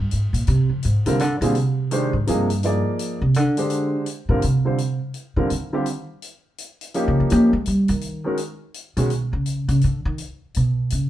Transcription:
0.00 0.10 G2 medium
0.11 0.32 G#2 medium
0.11 closed hi-hat soft
0.33 0.46 A#2 medium
0.33 closed hi-hat soft
0.47 0.69 C3 loud
0.47 closed hi-hat soft
0.70 0.82 F2 medium
0.83 1.05 G#2 medium
0.83 closed hi-hat soft
1.06 1.20 C3 medium
1.06 1.18 D3 medium
1.06 1.18 G3 medium
1.06 1.18 C4 medium
1.06 1.18 F4 medium
1.06 1.19 A#4 medium
1.06 closed hi-hat soft
1.19 1.40 D3 medium
1.19 closed hi-hat soft
1.41 1.56 A#2 medium
1.41 1.53 D3 medium
1.41 1.54 G3 medium
1.41 1.54 C4 medium
1.41 1.54 F4 medium
1.41 1.54 G#4 medium
1.41 closed hi-hat soft
1.55 2.13 C3 loud
1.55 closed hi-hat soft
1.91 2.11 D#3 medium
1.91 2.12 G#3 medium
1.91 2.12 D4 soft
1.91 2.12 G4 medium
1.91 2.12 C5 medium
1.91 closed hi-hat soft
2.13 2.26 G#2 medium
2.27 2.82 G2 medium
2.27 2.47 C3 medium
2.27 2.48 F3 medium
2.27 2.48 A#3 medium
2.27 2.48 D#4 medium
2.27 2.48 G#4 medium
2.27 closed hi-hat soft
2.50 closed hi-hat soft
2.63 3.17 F3 medium
2.63 3.17 A#3 soft
2.63 3.18 D#4 soft
2.63 3.18 G#4 medium
2.63 3.18 D5 medium
2.63 closed hi-hat soft
2.99 closed hi-hat soft
3.21 3.36 C3 medium
3.34 3.94 D3 medium
3.34 closed hi-hat soft
3.57 4.04 D3 soft
3.57 4.04 G#3 medium
3.57 4.04 D4 soft
3.57 4.04 G4 medium
3.57 4.05 C5 medium
3.57 closed hi-hat soft
3.70 closed hi-hat soft
4.06 closed hi-hat soft
4.29 4.42 A#2 medium
4.29 4.41 D3 medium
4.29 4.41 G3 medium
4.29 4.41 C4 medium
4.29 4.42 F4 medium
4.29 4.42 A#4 medium
4.42 4.98 C3 medium
4.42 closed hi-hat soft
4.65 4.77 D3 soft
4.65 4.77 G3 soft
4.65 4.77 C4 soft
4.65 4.78 F4 soft
4.65 4.78 C5 medium
4.78 closed hi-hat soft
5.14 closed hi-hat soft
5.36 5.50 D3 medium
5.36 5.49 D3 medium
5.36 5.49 G3 soft
5.36 5.49 C4 medium
5.36 5.49 F4 soft
5.36 5.50 A#4 medium
5.50 6.05 D#3 medium
5.50 closed hi-hat soft
5.73 5.85 D3 medium
5.73 5.85 G3 medium
5.73 5.85 C4 medium
5.73 5.86 F4 medium
5.73 5.86 G4 medium
5.86 closed hi-hat soft
6.22 closed hi-hat soft
6.58 closed hi-hat soft
6.81 closed hi-hat soft
6.94 7.29 F3 medium
6.94 7.29 A#3 medium
6.94 7.29 C#4 medium
6.94 7.30 D#4 medium
6.94 7.30 G4 medium
6.94 closed hi-hat soft
7.08 7.19 C#3 medium
7.20 7.31 F3 medium
7.30 7.51 F3 medium
7.30 7.51 A#3 medium
7.30 7.52 A#3 loud
7.30 7.51 C#4 medium
7.30 7.51 D#4 medium
7.30 7.52 G4 medium
7.30 closed hi-hat soft
7.53 7.66 G#3 medium
7.66 7.88 G3 medium
7.66 closed hi-hat soft
7.88 8.22 D#3 medium
7.88 closed hi-hat soft
8.01 closed hi-hat soft
8.24 8.37 D#3 medium
8.24 8.37 G#3 soft
8.24 8.37 C#4 soft
8.24 8.37 F#4 soft
8.24 8.38 A#4 medium
8.37 closed hi-hat soft
8.74 closed hi-hat soft
8.97 9.30 B2 medium
8.97 9.09 D#3 medium
8.97 9.09 G#3 medium
8.97 9.09 C#4 medium
8.97 9.10 F#4 soft
8.97 9.10 G#4 medium
8.97 closed hi-hat soft
9.10 closed hi-hat soft
9.33 9.66 C#3 medium
9.46 closed hi-hat soft
9.68 9.82 C#3 medium
9.68 closed hi-hat soft
9.81 10.05 D3 medium
9.81 closed hi-hat soft
10.05 10.18 D#3 medium
10.18 closed hi-hat soft
10.54 10.89 B2 medium
10.54 closed hi-hat soft
10.90 11.10 C#3 medium
10.90 closed hi-hat soft

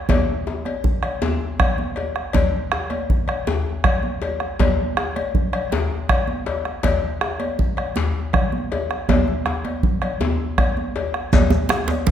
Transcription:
0.09 bombo low medium
0.09 cowbell medium
0.09 djembe slap medium
0.09 high conga medium
0.09 low conga medium
0.09 djembe bass medium
0.28 djembe slap soft
0.47 high conga soft
0.47 djembe tone medium
0.65 bombo rim soft
0.65 cowbell soft
0.65 high conga soft
0.84 bombo low medium
0.84 high conga soft
0.84 low conga medium
1.03 bombo rim medium
1.03 cowbell soft
1.03 high conga soft
1.22 djembe slap medium
1.22 djembe tone medium
1.22 high conga medium
1.22 djembe bass medium
1.41 high conga soft
1.59 bombo rim loud
1.59 bombo low loud
1.59 cowbell soft
1.59 djembe slap soft
1.59 high conga soft
1.59 low conga medium
1.78 high conga soft
1.96 bombo rim soft
1.96 cowbell soft
1.96 djembe slap soft
1.96 djembe tone medium
2.16 bombo rim medium
2.16 high conga soft
2.33 bombo low medium
2.33 cowbell medium
2.33 djembe slap medium
2.33 high conga medium
2.33 low conga medium
2.33 djembe bass medium
2.53 high conga soft
2.72 bombo rim medium
2.72 djembe tone medium
2.90 bombo rim soft
2.90 cowbell soft
2.90 high conga soft
3.10 bombo low medium
3.10 djembe slap soft
3.10 high conga soft
3.10 low conga medium
3.28 bombo rim medium
3.28 cowbell soft
3.47 bombo rim soft
3.47 djembe slap medium
3.47 high conga medium
3.47 djembe tone medium
3.47 djembe bass medium
3.67 djembe slap soft
3.84 bombo rim medium
3.84 bombo low medium
3.84 cowbell medium
3.84 high conga soft
3.84 low conga medium
4.03 high conga soft
4.22 cowbell soft
4.22 djembe slap soft
4.22 djembe tone medium
4.40 bombo rim medium
4.40 high conga soft
4.59 bombo low medium
4.59 cowbell medium
4.59 djembe slap medium
4.59 high conga medium
4.59 djembe bass medium
4.59 low conga medium
4.97 bombo rim medium
4.97 djembe tone medium
5.16 bombo rim soft
5.16 cowbell medium
5.16 high conga medium
5.34 bombo low medium
5.34 djembe slap soft
5.34 high conga soft
5.34 low conga medium
5.53 bombo rim medium
5.53 cowbell medium
5.72 bombo rim soft
5.72 djembe slap medium
5.72 high conga medium
5.72 djembe tone medium
5.72 djembe bass medium
5.91 bombo rim soft
5.91 djembe slap soft
6.09 bombo rim medium
6.09 bombo low medium
6.09 cowbell medium
6.09 high conga soft
6.09 low conga medium
6.27 high conga soft
6.46 cowbell soft
6.46 djembe slap soft
6.46 djembe tone medium
6.65 bombo rim medium
6.65 high conga soft
6.83 bombo low medium
6.83 cowbell medium
6.83 djembe slap medium
6.83 high conga medium
6.83 djembe bass medium
6.83 low conga medium
7.03 high conga soft
7.21 bombo rim medium
7.21 djembe tone medium
7.40 bombo rim soft
7.40 cowbell soft
7.40 high conga soft
7.59 bombo low medium
7.59 djembe slap soft
7.59 high conga soft
7.59 low conga medium
7.77 bombo rim medium
7.77 cowbell soft
7.96 bombo rim soft
7.96 djembe slap medium
7.96 high conga medium
7.96 djembe tone medium
7.96 djembe bass medium
8.16 bombo rim soft
8.16 djembe slap soft
8.33 bombo rim medium
8.33 bombo low medium
8.33 cowbell soft
8.33 high conga soft
8.33 low conga medium
8.52 high conga medium
8.72 cowbell soft
8.72 djembe slap soft
8.72 djembe tone medium
8.90 bombo rim medium
8.90 high conga soft
9.09 bombo rim soft
9.09 bombo low medium
9.09 cowbell medium
9.09 djembe slap medium
9.09 high conga medium
9.09 low conga medium
9.09 djembe bass medium
9.28 djembe slap soft
9.28 high conga soft
9.46 bombo rim medium
9.46 djembe tone medium
9.65 cowbell soft
9.65 high conga medium
9.83 bombo low medium
9.83 high conga soft
9.83 low conga medium
10.02 bombo rim medium
10.02 cowbell soft
10.02 high conga soft
10.20 djembe slap medium
10.20 high conga medium
10.20 djembe tone medium
10.20 djembe bass medium
10.58 bombo rim medium
10.58 bombo low medium
10.58 cowbell soft
10.58 low conga medium
10.77 high conga medium
10.96 cowbell medium
10.96 djembe slap soft
10.96 djembe tone medium
11.14 bombo rim medium
11.14 high conga soft
11.33 bombo low loud
11.33 cowbell medium
11.33 djembe slap medium
11.33 high conga medium
11.33 low conga medium
11.33 djembe bass medium
11.33 shekere medium
11.50 djembe tone medium
11.50 high conga soft
11.50 shekere soft
11.69 bombo rim medium
11.69 djembe slap medium
11.69 djembe tone medium
11.69 shekere soft
11.88 bombo rim soft
11.88 cowbell soft
11.88 djembe slap medium
11.88 high conga medium
11.88 shekere soft
12.07 bombo low loud
12.07 djembe slap medium
12.07 djembe slap soft
12.07 high conga soft
12.07 low conga medium

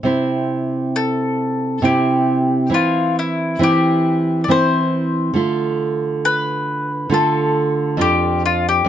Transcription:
0.03 1.80 C3 soft
0.03 1.81 C4 soft
0.03 1.81 E4 soft
0.96 1.81 A4 medium
1.82 2.69 C3 soft
1.82 2.69 C4 soft
1.82 2.70 E4 soft
1.82 2.69 G4 soft
2.70 3.58 E3 soft
2.70 3.59 C4 soft
2.70 3.59 E4 soft
2.74 3.15 F4 medium
3.19 3.60 E4 soft
3.59 4.46 E3 soft
3.59 4.47 C4 soft
3.59 4.48 E4 soft
3.63 4.40 G4 medium
4.44 4.51 D5 soft
4.48 5.33 E3 soft
4.48 5.33 C4 soft
4.48 5.34 E4 soft
4.48 5.33 C5 medium
5.34 7.07 D3 soft
5.34 7.08 A3 soft
5.34 7.08 F4 soft
6.25 7.09 B4 medium
7.10 7.96 D3 soft
7.10 7.97 A3 soft
7.10 7.97 F4 soft
7.14 7.97 A4 medium
7.97 8.83 F2 soft
7.97 8.84 D4 soft
7.97 8.85 F4 soft
8.01 8.42 G4 medium
8.46 8.65 F4 medium
8.69 8.88 G4 medium
8.85 8.89 F2 soft

